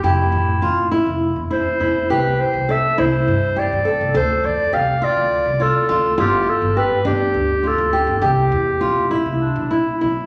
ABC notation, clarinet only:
X:1
M:7/8
L:1/8
Q:1/4=102
K:C
V:1 name="Clarinet"
E3 z2 c2 | B c e c2 d2 | c d f d2 A2 | G A B G2 A2 |
G4 D E2 |]